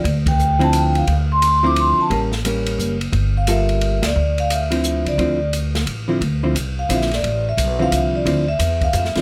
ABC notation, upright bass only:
X:1
M:3/4
L:1/8
Q:"Swing" 1/4=175
K:Dm
V:1 name="Upright bass" clef=bass
D,,6 | D,,4- D,, z | A,,,4 ^F,,,2 | G,,,4- G,,, ^C,, |
D,,4- D,, ^C,, | D,,4 A,,,2 | D,,2 C,,2 B,,,2 | A,,,2 =B,,,2 C,,2 |
D,,2 E,,2 F,, z |]